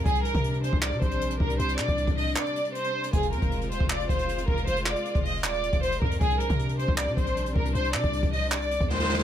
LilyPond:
<<
  \new Staff \with { instrumentName = "Violin section" } { \time 4/4 \key c \minor \tempo 4 = 156 aes'8 bes'4 c''8 d''8 c''4 bes'8 | c''8 d''4 ees''8 d''4 c''4 | aes'8 bes'4 c''8 d''8 c''4 bes'8 | c''8 d''4 ees''8 d''4 c''8 bes'8 |
aes'8 bes'4 c''8 d''8 c''4 bes'8 | c''8 d''4 ees''8 d''4 c''4 | }
  \new Staff \with { instrumentName = "String section" } { \clef bass \time 4/4 \key c \minor << { <g d'>1~ | <g d'>1 | <aes f'>1~ | <aes f'>1 |
<g d'>1~ | <g d'>1 | } \\ { c1~ | c1~ | c1~ | c1 |
c1~ | c1 | } >> }
  \new Staff \with { instrumentName = "808-style bass" } { \clef bass \time 4/4 \key c \minor c,8. c4 c,8 c16 bes,,4 c,8 | c,8 c16 c,8 c,8. r2 | f,,8 f,16 f,,8. ees,,16 f,,8. f,,4 f,,8 | f,,8. r8 f,,8. ees,,8. f,,8. f,8 |
c,8. c4 c,8 c16 bes,,4 c,8 | c,8 c16 c,8 c,4. ees,4~ ees,16 | }
  \new DrumStaff \with { instrumentName = "Drums" } \drummode { \time 4/4 <hh bd>16 hh16 hh16 <hh bd>16 hh16 hh16 hh16 bd16 hc16 hh16 <hh bd>16 hh16 hh16 hh16 bd16 hh16 | hh16 hh16 <hc hh>16 <hh bd>16 hh16 <hh bd>16 hho8 <hc hh>16 hh16 hh16 hh16 hh16 hh8 hh16 | <hh bd>16 hh16 hh16 <hh bd>16 hh16 hh16 hh16 bd16 <hc hh>16 hh16 <hh bd>16 hh16 hh16 hh16 bd16 hh16 | hh16 hh16 <hc hh>16 hh16 hh16 <hh bd>16 hho8 <hc hh>16 hh16 hh16 <hh bd>16 hh16 hh16 bd16 hh16 |
<hh bd>16 hh16 hh16 <hh bd>16 hh16 hh16 hh16 bd16 <hc hh>16 hh16 <hh bd>16 hh16 hh16 hh16 bd16 hh16 | hh16 hh16 <hc hh>16 <hh bd>16 hh16 <hh bd>16 hho8 <hc hh>16 hh16 hh16 <hh bd>16 sn32 sn32 sn32 sn32 sn32 sn32 sn16 | }
>>